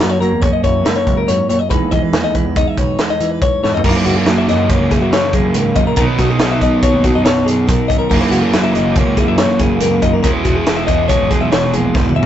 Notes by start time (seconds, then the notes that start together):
Already playing: F#2 A#3
0.00 F#3 E4, snare, closed hi-hat
0.09 F#4 C#5
0.21 F#3 A#3 A#4, closed hi-hat
0.31 E2
0.42 C#4 C#5, kick, closed hi-hat
0.53 D#5
0.64 F#2 E4 C#5, kick, closed hi-hat
0.85 C#2 A#3 A#4, snare, closed hi-hat
0.96 C#5
1.07 C#2 F#3, kick, closed hi-hat
1.17 A#4
1.28 F#2 G#2 C#5, closed hi-hat
1.49 F#2 A#2 C#5, closed hi-hat
1.59 D#5
1.70 E2 E3 G#3 D#4 G#4 B4, kick, closed hi-hat
1.82 D#2
1.91 E3 G#3 D#5, kick, closed hi-hat
2.02 E3 B4
2.13 D#2 G#4, snare, closed hi-hat
2.24 D#5
2.35 E3 G#3 B4, kick, closed hi-hat
2.45 E2
2.56 D#4 D#5, kick, closed hi-hat
2.67 E5
2.77 B1 B4 C#5, kick, closed hi-hat
2.99 G#3 B4, snare, closed hi-hat
3.10 D#5
3.20 E3, closed hi-hat
3.31 B4
3.42 C#5, kick, closed hi-hat
3.63 E2 G#2 C#5, snare
3.74 D#5, floor tom
3.84 F#2 C#3 E3 F#3 A#4, kick, crash
3.88 A#3 D#4 E4
3.95 B4
4.05 C#2 F#4, closed hi-hat
4.17 G#4
4.26 F#3 A#3, snare, closed hi-hat
4.38 E5
4.48 F#2 F#3 D#5, snare, closed hi-hat
4.70 A#3 C#5, kick, closed hi-hat
4.79 C#2
4.91 E4 G#4, kick, snare, closed hi-hat
5.00 F#3 E5
5.12 C#3 C#5, snare, closed hi-hat
5.33 F#2 A#3 G#4, kick, closed hi-hat
5.54 C#2 G#2 A#4, closed hi-hat
5.76 F#2 A#2 D#5, kick, closed hi-hat
5.87 A#4
5.96 B1 B2 F#3 B3 D#4 A#4, kick, closed hi-hat
6.00 D#3 C#4 F#4
6.08 B4
6.19 B1 C#4 F#4, kick, snare, closed hi-hat
6.30 G#4
6.39 B1, snare, closed hi-hat
6.52 E5
6.61 B1 D#3 C#4 D#5, kick, closed hi-hat
6.83 C#5, kick, closed hi-hat
6.94 D#2
7.03 F#4, kick, snare, closed hi-hat
7.15 F#2 D#5
7.25 B1 F#2 C#5, snare, closed hi-hat
7.46 G#4, closed hi-hat
7.67 B1 B2 F#4 A#4, kick, closed hi-hat
7.88 G#1 C#4 D#5, kick, closed hi-hat
7.99 A#4
8.10 F#1 F#2 C#3 E3 F#3 A#3 D#4 A#4, kick, crash
8.14 E4
8.21 B4
8.31 C#2 F#4, closed hi-hat
8.42 G#4
8.53 F#2 A#3, snare, closed hi-hat
8.63 E5
8.74 F#1 F#3 D#5, closed hi-hat
8.96 A#3 C#5, kick, closed hi-hat
9.07 C#2
9.17 E4 G#4, kick, closed hi-hat
9.27 F#2 E5
9.37 C#3 C#5, snare, closed hi-hat
9.59 F#1 A#3 G#4, kick, closed hi-hat
9.80 C#2 F#2 F#4 A#4, closed hi-hat
10.02 F#1 D#4 D#5, kick, closed hi-hat
10.13 A#4
10.23 E1 E2 E3 G#3 B3 C#4 F#4 A#4, kick, closed hi-hat
10.27 E4
10.33 B4
10.44 E1 B3 F#4, kick, closed hi-hat
10.56 C#4 G#4
10.66 E1 G#3, snare, closed hi-hat
10.77 E5
10.87 E1 E3 C#4 D#5, kick, closed hi-hat
11.08 G#3 C#5, kick, snare, closed hi-hat
11.19 G#1
11.30 F#4 G#4, kick, snare, closed hi-hat
11.41 B1 E5
11.52 E1 B2 C#5, snare, closed hi-hat
11.74 A#1 G#3 G#4, closed hi-hat
11.94 G#1 E2 F#4 B4, kick, snare
12.09 mid tom
12.16 F#1 B3 E5
12.23 floor tom